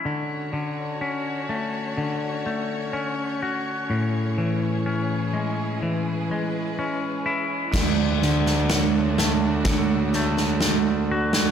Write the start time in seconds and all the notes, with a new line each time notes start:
0.05 D3 C#4 F#4 C#5
0.53 D3
1.01 C#4
1.49 A3
1.98 D3
2.46 A3
2.93 C#4
3.43 F#4
3.88 A2 E4 G#4
4.38 E3
4.86 C#4
5.33 G#3
5.80 E3 B4
6.31 G#3
6.79 C#4
7.26 E4
7.71 D2 D3 A3 D4 F#4 D5, kick, snare, crash
8.22 D3, snare
8.46 snare
8.69 C#5, snare
9.18 A3, snare
9.65 D3 C#5, kick, snare
10.13 A3, snare
10.37 snare
10.61 D5, snare
11.11 F#4
11.33 snare